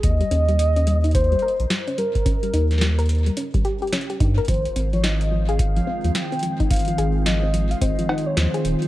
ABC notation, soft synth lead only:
X:1
M:4/4
L:1/16
Q:"Swing 16ths" 1/4=108
K:Ab
V:1 name="Soft synth lead"
e8 c6 B2- | B6 z8 z2 | c3 d e3 f f4 g4 | f4 e3 f e3 d c3 z |]